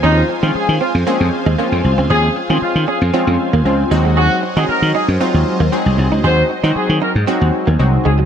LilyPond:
<<
  \new Staff \with { instrumentName = "Supersaw synth" } { \time 4/4 \key aes \mixolydian \tempo 4 = 116 << { aes''1~ | aes''1~ | aes''1~ | aes''1 | } \\ { <f' c'' f''>1~ | <f' c'' f''>2.~ <f' c'' f''>8 <ges c'' ees''>8~ | <ges c'' ees''>1~ | <ges c'' ees''>1 | } >> }
  \new Staff \with { instrumentName = "Horn section" } { \time 4/4 \key aes \mixolydian ees'8 r16 f'16 aes'8 f'16 r2 r16 | aes'8 r16 aes'16 f'8 aes'16 r2 r16 | ges'8 r16 aes'16 bes'8 aes'16 r2 r16 | c''8 r16 c''16 aes'8 bes'16 r4. r16 aes'16 r16 | }
  \new Staff \with { instrumentName = "Analog polysynth" } { \time 4/4 \key aes \mixolydian <f aes c' des' f'>8 r16 <f aes c' des' aes'>4 r16 <f aes c' des' aes'>8. r16 <f aes c' des' f'>8. r16 | <f aes c' des' aes'>8 r16 <f aes c' des' f'>4 r16 <f aes c' des' f'>8. r16 <f aes c' des' f'>8 <ges aes c' ees' ges'>8~ | <ges aes c' ees' ges'>8 r16 <ges aes c' ees' ges'>4 r16 <ges aes c' ees' f'>8. r16 <ges aes c' ees' aes'>8. r16 | <ges aes c' ees' ges'>8 r16 <ges aes c' ees' ges'>4 r16 <ges aes c' ees' ges'>8. r16 <ges aes c' ees' ges'>8. r16 | }
  \new Staff \with { instrumentName = "Clean electric guitar" } { \time 4/4 \key aes \mixolydian des'16 r8 c'16 r8 c'16 r16 bes16 r8 aes16 bes16 r8 c'16 | des'16 r8 c'16 r8 des'16 r16 c'16 r8 bes16 r8 aes16 aes16 | aes'16 r8 ees'16 r8 ees'16 r16 c'16 r8 bes16 c'16 r8 ees'16 | aes'16 r8 ees'16 r8 ees'16 r16 c'16 r8 bes16 r8 aes16 ges16 | }
  \new Staff \with { instrumentName = "Slap bass" } { \clef bass \time 4/4 \key aes \mixolydian ees,8 r16 ees16 r16 ees16 r16 f,16 r16 f,16 r16 ees,16 r16 f,16 c,16 des,16 | ees,8 r16 ees16 r16 ees16 r16 f,16 r16 f,16 r16 ees,16 des,8 ees,8~ | ees,8 r16 ees16 r16 ees16 r16 ges,16 r16 ees,16 r16 ees,16 r16 c,16 c,16 des,16 | ees,8 r16 ees16 r16 ees16 r16 aes,16 r16 ees,16 r16 ees,16 c,8 des,8 | }
>>